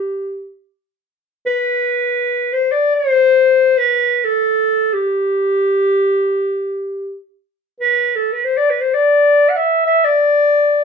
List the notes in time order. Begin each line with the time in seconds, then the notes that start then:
Already playing: G4
1.46 B4
2.53 C5
2.72 D5
2.95 C5
3.78 B4
4.25 A4
4.94 G4
7.81 B4
8.16 A4
8.33 B4
8.45 C5
8.57 D5
8.70 B4
8.81 C5
8.94 D5
9.49 F#5
9.57 E5
9.86 E5
10.05 D5